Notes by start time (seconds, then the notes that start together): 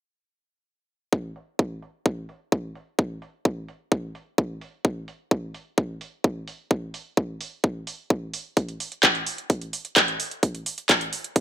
1.13 kick
1.36 open hi-hat
1.59 kick
1.82 open hi-hat
2.06 kick
2.29 open hi-hat
2.52 kick
2.75 open hi-hat
2.99 kick
3.22 open hi-hat
3.45 kick
3.68 open hi-hat
3.92 kick
4.15 open hi-hat
4.38 kick
4.61 open hi-hat
4.85 kick
5.08 open hi-hat
5.31 kick
5.54 open hi-hat
5.78 kick
6.01 open hi-hat
6.24 kick
6.48 open hi-hat
6.71 kick
6.94 open hi-hat
7.17 kick
7.41 open hi-hat
7.64 kick
7.87 open hi-hat
8.10 kick
8.34 open hi-hat
8.57 kick, closed hi-hat
8.69 closed hi-hat
8.80 open hi-hat
8.92 closed hi-hat
9.03 kick, clap, closed hi-hat
9.15 closed hi-hat
9.27 open hi-hat
9.38 closed hi-hat
9.50 kick, closed hi-hat
9.62 closed hi-hat
9.73 open hi-hat
9.85 closed hi-hat
9.96 kick, clap, closed hi-hat
10.08 closed hi-hat
10.20 open hi-hat
10.31 closed hi-hat
10.43 kick, closed hi-hat
10.55 closed hi-hat
10.66 open hi-hat
10.78 closed hi-hat
10.89 kick, clap, closed hi-hat
11.01 closed hi-hat
11.13 open hi-hat
11.24 closed hi-hat
11.36 kick, closed hi-hat